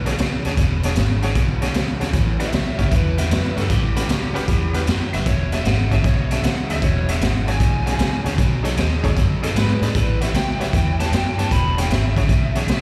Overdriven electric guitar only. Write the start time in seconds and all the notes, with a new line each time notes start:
0.06 E2 B2
0.18 E2 C#3
0.45 E2 C#3
0.58 E2 B2
0.84 E2 B2
0.97 E2 C#3
1.23 E2 C#3
1.35 E2 B2
1.62 E2 B2
1.74 E2 C#3
2.01 E2 C#3
2.14 A2 E3
2.40 A2 E3
2.53 A2 F#3
2.79 A2 F#3
2.91 A2 E3
3.18 A2 E3
3.31 A2 F#3
3.57 A2 F#3
3.70 A2 E3
3.96 A2 E3
4.08 A2 F#3
4.35 A2 F#3
4.48 A2 E3
4.75 A2 E3
4.88 A2 F#3
5.14 A2 F#3
5.26 E2 B2
5.52 E2 B2
5.65 E2 C#3
5.91 E2 C#3
6.04 E2 B2
6.31 E2 B2
6.43 E2 C#3
6.70 E2 C#3
6.82 E2 B2
7.09 E2 B2
7.22 E2 C#3
7.47 E2 C#3
7.60 E2 B2
7.86 E2 B2
7.99 E2 C#3
8.26 E2 C#3
8.38 B2 F#3
8.64 B2 F#3
8.77 B2 G#3
9.04 B2 G#3
9.16 B2 F#3
9.43 B2 F#3
9.56 B2 G#3
9.82 B2 G#3
9.95 A2 E3
10.21 A2 E3
10.34 A2 F#3
10.61 A2 F#3
10.73 A2 E3
11.00 A2 E3
11.12 A2 F#3
11.39 A2 F#3
11.51 E2 B2
11.78 E2 B2
11.90 E2 C#3
12.17 E2 C#3
12.29 E2 B2
12.55 E2 B2
12.68 E2 C#3